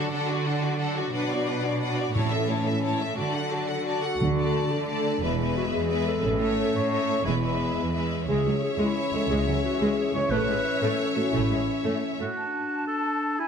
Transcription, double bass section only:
4.20 4.52 D2 soft
5.22 5.53 E1 soft
6.23 6.55 A1 medium
7.26 7.57 E1 soft
8.28 8.44 C#2 soft
9.29 9.45 C#2 soft
10.32 10.47 A1 medium
11.33 11.49 A1 soft

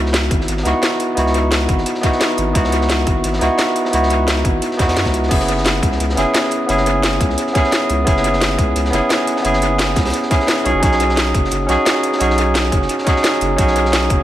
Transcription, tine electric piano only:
0.00 0.62 B3 medium
0.00 0.63 D#4 medium
0.00 0.64 E4 medium
0.00 0.65 F#4 medium
0.63 1.14 B3 medium
0.63 1.15 D#4 medium
0.63 1.16 E4 medium
0.67 1.16 F#4 loud
1.15 2.00 B3 medium
1.15 2.01 D#4 medium
1.15 2.02 E4 medium
1.19 2.02 F#4 loud
2.01 2.52 B3 medium
2.01 2.53 D#4 medium
2.01 2.54 E4 medium
2.05 2.54 F#4 loud
2.53 3.38 B3 medium
2.53 3.39 D#4 medium
2.53 3.40 E4 medium
2.57 3.40 F#4 loud
3.39 3.90 B3 loud
3.39 3.91 D#4 medium
3.39 3.92 E4 medium
3.43 3.92 F#4 loud
3.91 4.76 B3 medium
3.91 4.77 D#4 medium
3.91 4.78 E4 medium
3.95 4.78 F#4 loud
4.77 5.28 B3 medium
4.77 5.29 D#4 medium
4.77 5.29 E4 medium
4.81 5.30 F#4 loud
5.29 6.14 B3 medium
5.29 6.15 C#4 medium
5.29 6.16 E4 medium
5.33 6.16 G#4 medium
6.15 6.66 B3 medium
6.15 6.67 C#4 medium
6.15 6.67 E4 medium
6.19 6.68 G#4 loud
6.67 7.52 B3 medium
6.67 7.53 C#4 medium
6.67 7.53 E4 medium
6.71 7.54 G#4 loud
7.53 8.04 B3 medium
7.53 8.05 C#4 medium
7.53 8.05 E4 medium
7.57 8.06 G#4 loud
8.05 8.90 B3 medium
8.05 8.91 C#4 medium
8.05 8.92 E4 medium
8.09 8.92 G#4 loud
8.91 9.41 B3 loud
8.91 9.42 C#4 medium
8.91 9.43 E4 medium
8.95 9.44 G#4 loud
9.43 10.28 B3 medium
9.43 10.29 C#4 medium
9.43 10.29 E4 medium
9.47 10.30 G#4 loud
10.30 10.63 B3 medium
10.30 10.63 C#4 medium
10.30 10.64 E4 medium
10.30 10.64 G#4 medium
10.64 10.79 C#4 medium
10.64 10.81 D#4 medium
10.64 10.81 F#4 medium
10.64 10.81 G#4 loud
10.80 11.65 C#4 medium
10.80 11.67 D#4 medium
10.80 11.67 F#4 medium
10.85 11.68 G#4 loud
11.67 12.17 C#4 loud
11.67 12.18 D#4 medium
11.67 12.19 F#4 medium
11.71 12.20 G#4 loud
12.19 13.03 C#4 medium
12.19 13.05 D#4 medium
12.19 13.05 F#4 medium
12.19 13.06 G#4 loud
13.05 13.55 C#4 loud
13.05 13.56 D#4 medium
13.05 13.57 F#4 medium
13.09 13.58 G#4 loud
13.56 14.23 C#4 medium
13.56 14.23 D#4 medium
13.56 14.23 F#4 medium
13.61 14.23 G#4 medium

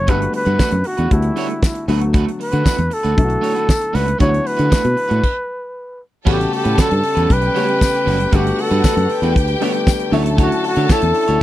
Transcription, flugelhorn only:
0.00 0.11 C#5 medium
0.10 0.35 B4 medium
0.36 0.88 B4 loud
0.87 1.14 F#4 medium
1.13 1.63 E4 medium
1.65 1.88 E4 medium
2.42 2.95 B4 medium
2.94 3.97 A4 loud
3.95 4.20 B4 medium
4.21 4.48 C#5 loud
4.47 6.01 B4 loud
6.29 6.52 G4 medium
6.55 6.82 G4 medium
6.81 7.34 A4 loud
7.33 8.37 B4 loud
8.35 8.63 G4 loud
8.61 9.37 A4 loud
10.41 10.64 F#4 medium
10.67 10.94 F#4 loud
10.92 11.43 A4 loud

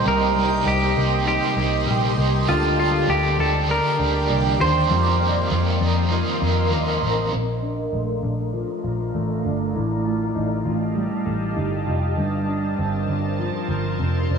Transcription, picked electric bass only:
0.06 0.59 C2 medium
0.66 0.93 C2 loud
0.97 1.37 C2 medium
1.57 1.83 C2 medium
1.87 2.14 A#1 medium
2.18 2.44 C2 medium
2.48 3.01 D2 loud
3.08 3.35 D2 loud
3.38 3.78 D2 loud
4.00 4.26 D2 medium
4.30 4.57 C2 medium
4.60 4.86 D#2 medium
4.91 5.44 F2 loud
5.51 5.78 F2 loud
5.81 6.21 F2 loud
6.42 6.72 F2 medium
6.72 6.99 D#2 medium
7.03 7.29 A1 medium
7.33 7.86 A#1 medium
7.93 8.20 A#1 medium
8.23 8.63 A#1 medium
8.84 9.11 A#1 medium
9.15 9.41 A1 medium
9.46 9.72 G1 medium
9.76 10.29 A1 medium
10.36 10.63 A1 medium
10.66 11.06 A1 medium
11.27 11.53 A1 medium
11.57 11.84 G1 medium
11.88 12.14 F1 medium
12.18 12.71 G1 medium
12.79 13.05 G1 medium
13.08 13.48 G1 medium
13.69 13.95 G1 medium
14.00 14.26 F1 medium
14.29 14.38 F1 medium

